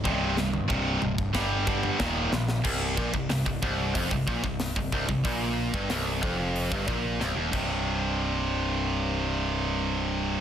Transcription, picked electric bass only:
\new Staff \with { instrumentName = "Picked electric bass" } { \clef bass \time 4/4 \key c \minor \tempo 4 = 92 c,,4 c,,8 c,,8 g,,4 ees,,8 bes,,8 | c,,8 bes,,16 c,,16 c,,16 c,,16 c,,8 f,,16 c,,16 bes,,16 c,,8 c,,16 c,,16 c,,16 | bes,,8. g,,16 c,,8 f,,8. g,,16 bes,,8 c,,16 ees,,16 c,,8~ | c,,1 | }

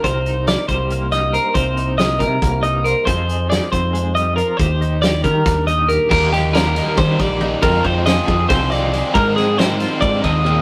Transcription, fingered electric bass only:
\new Staff \with { instrumentName = "Fingered electric bass" } { \clef bass \time 7/8 \key ees \major \tempo 4 = 138 c,4. c,2 | c,4. c8 c,4. | f,4. f,2 | ees,4. ees8 ees,4. |
ees,2 ees8 bes,,4 | f,8 f,4 f,8 c,4. | aes,2 aes,8 ees,4 | }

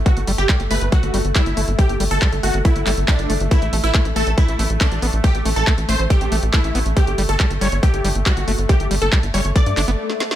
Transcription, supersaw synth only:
\new Staff \with { instrumentName = "Supersaw synth" } { \time 4/4 \key g \mixolydian \tempo 4 = 139 fis'8 r16 g'8 r16 b'16 r16 fis'8. r16 e'8. r16 | g'8 r16 a'8 r16 fis'16 r16 e'8. r16 d'8. r16 | e'8 r16 e'8 r16 a'16 r16 e'8. r16 d'8. r16 | g'8 r16 a'8 r16 c''16 r16 g'8. r16 e'8. r16 |
g'8 r16 a'8 r16 cis''16 r16 g'8. r16 fis'8. r16 | g'8 r16 a'8 r16 cis''16 r16 d''8. r4 r16 | }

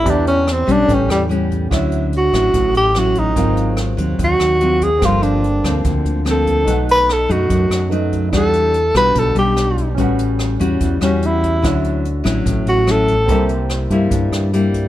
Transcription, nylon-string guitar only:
\new Staff \with { instrumentName = "Nylon-string guitar" } { \time 4/4 \key d \major \tempo 4 = 145 << { <b d' g'>4 r8 <g b cis'>4. <g b cis'>4 | <fis cis' e'>4 r8 <fis cis' e'>4. <fis cis' e'>4 | <fis bis eis'>4. <fis bis>4. <fis bis eis'>8 r8 | <f bes c'>4 r8 <f bes c'>4. <f bes c'>4 |
<fis a dis'>4 r8 <fis a dis'>4. <fis a dis'>4 | <g d' fis'>4 r8 <g d' fis'>4 <g d'>4. | <g cis' fis'>4. <g cis' fis'>4 <g cis' fis'>4. | <fis cis' e'>4 r8 <fis cis' e'>4. <fis cis' e'>8 r8 |
<g bes e'>4. <g bes e'>4. <g bes e'>4 | } \\ { e2 a,2 | d2 a,2 | gis,2 dis2 | g,2 d2 |
b,2 fis,2 | e2 b,2 | a,2 e2 | d2 a,2 |
c2 g,2 | } >> }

